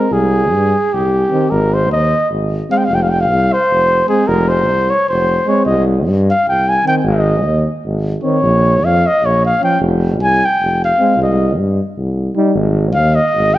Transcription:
Already playing: A#4
0.11 C2 G#4
0.52 G2
0.93 C2 G4
1.31 D#3 C4
1.50 G#1 A#4
1.74 C5
1.90 D#2 D#5
2.31 G#1
2.70 G#3 C4 F5
2.78 G5
2.85 F5
2.89 F1
2.95 G5
3.03 F5
3.10 G5
3.21 F5
3.30 C2
3.53 C5
3.70 F1
4.08 G#3 C4 G#4
4.27 F1 A#4
4.48 C5
4.69 C2
4.90 C#5
5.08 F1 C5
5.47 G#3 C4 C#5
5.66 C2 D#5
6.08 G2
6.30 F5
6.47 C2 G5
6.69 G#5
6.85 D#3 C4 G5
7.04 G#1 D#5
7.44 D#2
7.84 G#1
8.23 D#3 C4 C#5
8.42 A#1
8.82 F2 F5
9.07 D#5
9.22 A#1 C#5
9.46 F5
9.61 F3 C#4 G5
9.80 F1
10.19 C2 G#5
10.45 G5
10.61 F1
10.85 F5
10.99 G#3 C4
11.17 C2
11.22 D#5
11.58 G2
11.98 C2
12.36 G3 D#4
12.54 G#1
12.94 D#2 F5
13.15 D#5
13.35 G#1
13.54 G5

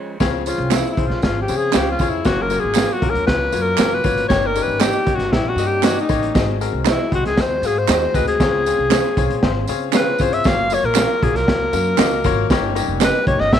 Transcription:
Already playing: F3 G#3 C#4
0.20 C#2 C#3 F3 C4 C#4 F4 G#4 C#5, kick, snare, closed hi-hat, tambourine
0.46 C4 F4 G#4 C#5, closed hi-hat, tambourine
0.58 C2
0.70 C4 C#4 E4 F4 G#4 C5 C#5 F5, snare, clap, closed hi-hat, tambourine
0.91 E4
0.97 C2 C4 F4 G#4 C5, kick, closed hi-hat
1.07 A#1 F4, snare
1.22 G#1 C4 F4 G#4 C#5, kick, snare, closed hi-hat, tambourine
1.41 G4
1.48 C#3 C4 F4 G#4 C#5, closed hi-hat, tambourine
1.57 G#4
1.72 C#2 C4 C#4 F4 G4 G#4 C5 C#5 F5, snare, clap, closed hi-hat, tambourine
1.91 F4
1.99 F2 C4 F4 G#4 C#5, kick, closed hi-hat, tambourine
2.10 E4
2.22 F#1 F#3 A#3 C#4 F4 F#4 C#5, kick, snare, closed hi-hat, tambourine
2.42 A#4
2.50 A#3 F4 F#4 C#5, closed hi-hat, tambourine
2.60 G#1 G#4
2.75 A#3 C#4 F4 F#4 A#4 C#5 F5, snare, clap, closed hi-hat, tambourine
2.93 F#4
3.01 A#1 A#3 F4 F#4 A#4, kick, closed hi-hat
3.10 A#4
3.15 D#2, closed hi-hat
3.26 C#2 A#3 F4 F#4 B4 C#5, kick, snare, closed hi-hat
3.52 F#2 A#3 F4 F#4 C#5, closed hi-hat, tambourine
3.61 A#4
3.77 F#1 A#3 C#4 F4 F#4 A#4 C#5 F5, snare, clap, closed hi-hat, tambourine
3.94 B4
4.04 G#1 A#3 F4 F#4 C#5, kick, closed hi-hat, tambourine
4.18 closed hi-hat
4.28 G1 G2 G3 A#3 C#4 D#4 G4 C#5, kick, snare, closed hi-hat, tambourine
4.46 A#4
4.55 A#3 D#4 G4 C#5, closed hi-hat, tambourine
4.63 B4
4.67 G#1
4.80 A#3 C#4 D#4 G4 A#4 C#5 D#5, snare, clap, closed hi-hat, tambourine
5.06 G#1 A#3 D#4 G4 C#5, kick, closed hi-hat
5.15 F#4
5.19 G1, snare, closed hi-hat
5.32 A#1 A#3 D#4 E4 G4 C#5, kick, snare, closed hi-hat
5.49 F#4
5.56 G2 A#3 D#4 G4 D#5, closed hi-hat, tambourine
5.67 G4
5.83 A#3 C#4 D#4 F#4 G4 A#4 C#5 D#5, snare, clap, closed hi-hat, tambourine
6.01 D#4
6.09 A1 A#3 D#4 G4 C#5, kick, closed hi-hat, tambourine
6.23 closed hi-hat
6.35 G#1 G#2 G#3 C4 F#4 G#4 D#5, kick, snare, closed hi-hat, tambourine
6.60 C4 F#4 G#4 A#4, closed hi-hat, tambourine
6.73 C2
6.85 C4 D#4 F#4 G#4 C5 D#5, snare, clap, closed hi-hat, tambourine
6.90 E4
7.11 C2 C4 F#4 G#4 C5, kick, closed hi-hat
7.25 C#2 G#4, snare, closed hi-hat
7.37 D#2 C4 F#4 G#4 C5 D#5, kick, snare, closed hi-hat, tambourine
7.62 G#2 C4 F#4 G#4 F5, closed hi-hat, tambourine
7.66 G#4
7.78 C5
7.88 D#2 C4 D#4 F#4 G#4 C5 D#5, snare, clap, closed hi-hat, tambourine
8.14 D2 C4 F#4 G#4 B4 D#5, kick, closed hi-hat, tambourine
8.28 G#4, closed hi-hat
8.40 C#2 C#3 C4 C#4 F4 G#4 C#5, kick, snare, closed hi-hat, tambourine
8.66 C4 F4 G#4 C#5, closed hi-hat, tambourine
8.79 C2
8.90 C4 C#4 F4 G#4 C5 C#5 F5, snare, clap, closed hi-hat, tambourine
9.17 C2 C4 F4 G#4 C#5, kick, closed hi-hat, tambourine
9.30 A#1, closed hi-hat
9.43 G#1 C4 F4 G#4 C5, kick, snare, closed hi-hat
9.68 C#3 C4 F4 G#4 C#5, closed hi-hat, tambourine
9.93 C4 C#4 F4 G#4 B4 C5 C#5 F5, snare, clap, closed hi-hat, tambourine
10.18 G1 C4 F4 G#4 C#5, kick, closed hi-hat, tambourine
10.23 C5
10.33 E5, closed hi-hat
10.44 F#1 F#3 A#3 F4 F#4 C#5 F5, kick, snare, closed hi-hat, tambourine
10.70 A#3 F4 F#4 C#5, closed hi-hat, tambourine
10.83 A#1 A#4
10.95 A#3 C#4 F4 F#4 A#4 C#5 F5, snare, clap, closed hi-hat, tambourine
11.23 A#1 A#3 F4 F#4 G#4 A#4, kick, closed hi-hat
11.34 C2 A#4, snare, closed hi-hat
11.48 C#2 A#3 F4 F#4 C#5, kick, snare, closed hi-hat
11.73 F#2 A#3 F4 F#4 A#4, closed hi-hat, tambourine
11.98 C#2 A#3 C#4 F4 F#4 A#4 D#5 F5, snare, clap, closed hi-hat, tambourine
12.24 G#1 A#3 F4 F#4 C#5, kick, closed hi-hat, tambourine
12.49 G1 G2 G3 A#3 C#4 D#4 G4 C#5, kick, snare, closed hi-hat, tambourine
12.75 A#3 D#4 G4 C#5, closed hi-hat, tambourine
12.88 F1
13.00 A#3 C#4 D#4 G4 A#4 B4 C5 D#5, snare, clap, closed hi-hat, tambourine
13.27 F1 A#3 D#4 G4 C#5, kick, closed hi-hat
13.39 G1 D#5, snare
13.53 A#1 A#3 D#4 G4 C#5 E5, kick, snare, closed hi-hat

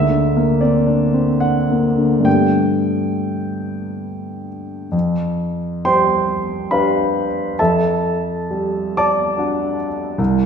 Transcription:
Already playing: D2 E5
0.10 D3
0.36 A#3
0.61 C4 D5
0.87 D4
1.13 C4
1.40 D4 F#5
1.71 A#3
1.97 D3
2.20 G2 A3 B3 D4 G4
2.25 G5
4.92 F2
5.85 G3 C5 G5 C6
6.71 D4 G4 B4 F5 B5
7.59 F2 A4 E5 A5
8.51 G3
8.97 D5 A5 D6
9.38 D4 F#4
10.18 C2

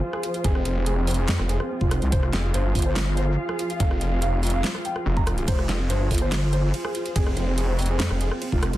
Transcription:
Already playing: F3 F4 G#4 C5
0.03 F4
0.13 G#4, cross-stick
0.23 F4, closed hi-hat
0.34 F4, closed hi-hat
0.44 F1 G#4, kick, closed hi-hat
0.55 C4, cross-stick
0.65 F1 C4, closed hi-hat
0.76 C4
0.86 G#4, closed hi-hat
0.97 C4
1.07 C4, closed hi-hat, open hi-hat
1.14 G#4, closed hi-hat
1.28 F2 C4, snare, closed hi-hat
1.39 F1 C4, cross-stick
1.49 G#4, closed hi-hat
1.60 C4, cross-stick
1.70 C4
1.81 F1 F4, kick
1.91 C4, cross-stick, closed hi-hat
2.02 C2 C4, closed hi-hat
2.12 F1 C5 F5, kick, closed hi-hat
2.23 F4, cross-stick
2.33 F1, snare, closed hi-hat
2.44 F4
2.54 G1 C5, closed hi-hat
2.65 F4
2.75 G1 F4, kick, closed hi-hat, open hi-hat
2.82 C5, closed hi-hat
2.96 F4, snare, closed hi-hat
3.07 F4
3.17 C5, closed hi-hat
3.28 F4
3.38 F4
3.49 G#4, cross-stick
3.59 F4, closed hi-hat
3.70 F4, closed hi-hat
3.80 F1 F5, kick, closed hi-hat
3.91 F4, cross-stick
4.01 F1 F4, closed hi-hat
4.12 F4
4.22 F5, closed hi-hat
4.33 F4
4.43 F4, closed hi-hat, open hi-hat
4.50 F5, closed hi-hat
4.64 F4, snare, closed hi-hat
4.75 F4, cross-stick
4.85 G5, closed hi-hat
4.96 F4, cross-stick
5.06 F1 F4
5.17 A#5, kick
5.27 F4, cross-stick, closed hi-hat
5.38 F4, closed hi-hat
5.48 F1 C5, kick, closed hi-hat, ride
5.59 F4, cross-stick
5.69 F1 F4, snare, closed hi-hat
5.80 F4
5.90 G1 C5, closed hi-hat, ride
6.01 F4
6.11 G1 F4, kick, closed hi-hat, open hi-hat
6.18 C5, closed hi-hat
6.32 F4, snare, closed hi-hat, ride
6.43 F4
6.53 C5, closed hi-hat
6.64 F4
6.74 F4, ride
6.85 G#4, cross-stick
6.95 F4, closed hi-hat
7.06 F4, closed hi-hat
7.16 F1 G#4, kick, closed hi-hat, ride
7.27 C4, cross-stick
7.37 F1 C4, closed hi-hat
7.48 C4
7.58 G#4, closed hi-hat, ride
7.68 C4
7.79 C4, closed hi-hat, open hi-hat
7.86 G#4, closed hi-hat
8.00 F2 C4, snare, closed hi-hat, ride
8.10 F1 C4, cross-stick
8.21 G#4, closed hi-hat
8.31 C4, cross-stick
8.42 C4, ride
8.52 F1 F4, kick
8.63 C4, cross-stick, closed hi-hat
8.73 C2 C4, closed hi-hat

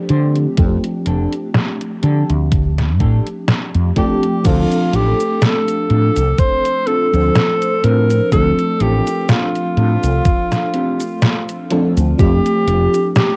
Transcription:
Already playing: F3 A3 C4 D4 G4
0.09 D3 D4 G4 C5, closed hi-hat
0.36 closed hi-hat
0.57 F2 F3 A3 C4 D4 G4, kick, closed hi-hat
0.84 closed hi-hat
1.06 F1 D4 G4 A4, closed hi-hat
1.33 closed hi-hat
1.54 snare, closed hi-hat
1.81 closed hi-hat
2.03 D3 D4 G4 A4, closed hi-hat
2.29 D2, closed hi-hat
2.51 kick, closed hi-hat
2.78 snare, closed hi-hat
2.99 A2 D4 G4 A4, kick, closed hi-hat
3.26 closed hi-hat
3.48 snare, closed hi-hat
3.75 F2, closed hi-hat
3.96 F3 A3 C4 D4 G4 A4, kick, closed hi-hat
4.23 closed hi-hat
4.43 D2 F3 A3 C4 D4 F4 A4, kick, closed hi-hat, crash, cabasa
4.72 closed hi-hat, cabasa
4.93 A1 C4 D4 F4 G4 A4, closed hi-hat
5.20 closed hi-hat, cabasa
5.42 A4, snare, closed hi-hat, cabasa
5.68 closed hi-hat, cabasa
5.90 A2 C4 D4 F4 A4, closed hi-hat
6.17 C2, closed hi-hat, cabasa
6.39 C5, kick, closed hi-hat, cabasa
6.65 closed hi-hat, cabasa
6.87 C4 D4 F4 A4, closed hi-hat
7.12 D2 F3 C4 D4 C5, closed hi-hat, cabasa
7.35 snare, closed hi-hat, cabasa
7.62 closed hi-hat, cabasa
7.83 A2 C4 D4 F4 A#4 C5, closed hi-hat
8.10 closed hi-hat, cabasa
8.31 D2 F3 A3 C4 D4 A4, kick, closed hi-hat, cabasa
8.59 closed hi-hat, cabasa
8.80 A1 C4 D4 F4 G4 A4, closed hi-hat
9.07 closed hi-hat, cabasa
9.29 F4, snare, closed hi-hat, cabasa
9.55 closed hi-hat, cabasa
9.77 A2 C4 D4 F4 A4, closed hi-hat
10.04 C2, closed hi-hat, cabasa
10.25 kick, closed hi-hat, cabasa
10.52 snare, closed hi-hat, cabasa
10.74 C4 D4 F4 G4, closed hi-hat
11.00 closed hi-hat, cabasa
11.22 snare, closed hi-hat, cabasa
11.49 closed hi-hat, cabasa
11.70 F3 A3 C4 D4 F4 A4, closed hi-hat
11.97 D2, closed hi-hat, cabasa
12.18 F2 F3 A3 C4 D4 G4, kick, closed hi-hat, cabasa
12.46 closed hi-hat, cabasa
12.67 F1 A3 D4 F4 G4, closed hi-hat
12.94 closed hi-hat, cabasa
13.16 G4, snare, closed hi-hat, cabasa

